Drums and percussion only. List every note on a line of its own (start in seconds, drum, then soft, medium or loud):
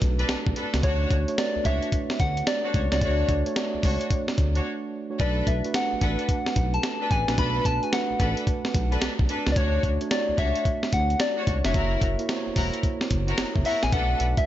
0.02 kick medium
0.02 closed hi-hat medium
0.19 closed hi-hat soft
0.29 snare loud
0.29 closed hi-hat medium
0.47 kick medium
0.56 closed hi-hat medium
0.74 snare medium
0.74 closed hi-hat medium
0.83 kick loud
0.83 closed hi-hat medium
1.11 kick medium
1.11 closed hi-hat medium
1.28 closed hi-hat medium
1.38 snare loud
1.38 closed hi-hat medium
1.65 kick medium
1.65 closed hi-hat medium
1.82 closed hi-hat medium
1.92 kick medium
1.92 closed hi-hat medium
2.10 snare medium
2.20 kick medium
2.20 closed hi-hat medium
2.37 closed hi-hat medium
2.47 snare loud
2.47 closed hi-hat medium
2.74 kick loud
2.74 closed hi-hat medium
2.92 snare medium
2.92 closed hi-hat medium
3.01 kick loud
3.01 closed hi-hat medium
3.29 kick medium
3.29 closed hi-hat medium
3.46 closed hi-hat medium
3.56 snare medium
3.56 closed hi-hat medium
3.83 kick medium
3.83 open hi-hat medium
4.01 closed hi-hat medium
4.11 kick medium
4.11 closed hi-hat medium
4.28 snare medium
4.38 kick medium
4.38 closed hi-hat medium
4.55 closed hi-hat soft
5.20 kick loud
5.20 closed hi-hat medium
5.47 kick medium
5.47 closed hi-hat medium
5.64 closed hi-hat medium
5.74 snare loud
5.74 closed hi-hat medium
6.01 kick medium
6.01 closed hi-hat medium
6.19 closed hi-hat medium
6.29 kick medium
6.29 closed hi-hat medium
6.46 snare medium
6.56 kick medium
6.56 closed hi-hat medium
6.74 closed hi-hat soft
6.83 snare loud
6.83 closed hi-hat medium
7.11 kick loud
7.11 closed hi-hat medium
7.28 snare medium
7.28 closed hi-hat medium
7.38 kick loud
7.38 closed hi-hat medium
7.65 kick medium
7.65 closed hi-hat medium
7.83 closed hi-hat medium
7.93 snare loud
7.93 closed hi-hat medium
8.20 kick medium
8.20 closed hi-hat medium
8.37 closed hi-hat medium
8.47 kick medium
8.47 closed hi-hat medium
8.65 snare medium
8.74 kick medium
8.74 closed hi-hat medium
8.92 closed hi-hat medium
9.01 snare medium
9.01 closed hi-hat medium
9.19 kick loud
9.29 closed hi-hat medium
9.47 snare medium
9.47 closed hi-hat medium
9.56 kick loud
9.56 closed hi-hat medium
9.83 kick medium
9.83 closed hi-hat medium
10.01 closed hi-hat medium
10.11 snare loud
10.11 closed hi-hat medium
10.38 kick medium
10.38 closed hi-hat medium
10.56 closed hi-hat medium
10.65 kick medium
10.65 closed hi-hat medium
10.83 snare medium
10.93 kick medium
10.93 closed hi-hat medium
11.10 closed hi-hat soft
11.20 snare loud
11.20 closed hi-hat medium
11.47 kick loud
11.47 closed hi-hat medium
11.65 snare medium
11.65 closed hi-hat medium
11.74 kick loud
11.74 closed hi-hat medium
12.02 kick medium
12.02 closed hi-hat medium
12.19 closed hi-hat medium
12.29 snare loud
12.29 closed hi-hat medium
12.56 kick medium
12.56 open hi-hat medium
12.73 closed hi-hat medium
12.83 kick medium
12.83 closed hi-hat medium
13.01 snare medium
13.11 kick medium
13.11 closed hi-hat medium
13.28 closed hi-hat soft
13.38 snare loud
13.38 closed hi-hat medium
13.56 kick loud
13.65 open hi-hat medium
13.83 snare medium
13.83 closed hi-hat medium
13.92 kick loud
13.92 closed hi-hat medium
14.20 closed hi-hat medium
14.37 kick medium
14.37 closed hi-hat medium